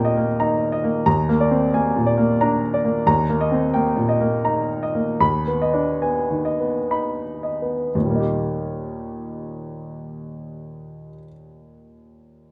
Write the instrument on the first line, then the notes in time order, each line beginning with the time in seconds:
grand piano
Already playing: D#2 A#2 A#3 C4 D#5 G5 A#5
0.05 D#5
0.17 A#3
0.40 D#4 A#5
0.72 D#5
0.84 A#3
1.06 D#2 A#5
1.29 A#3
1.41 D5
1.51 C4
1.74 A#3 G#5
1.96 A#2
2.06 D5
2.18 A#3
2.41 D4 A#5
2.74 D5
2.85 A#3
3.07 D#2 A#5
3.30 A#3
3.41 D#5
3.52 C4
3.74 A#3 G5
3.96 A#2
4.09 D#5
4.21 A#3
4.45 D#4 A#5
4.83 D#5
4.95 A#3
5.20 D#2 B5
5.47 B3
5.62 D#5
5.73 D4
6.02 B3 G#5
6.31 D#3
6.45 D#5
6.60 B3
6.91 D#4 B5
7.43 D#5
7.62 B3
7.95 D#2
8.00 A#2
8.05 G3
8.10 A#3
8.15 D#4
8.20 G4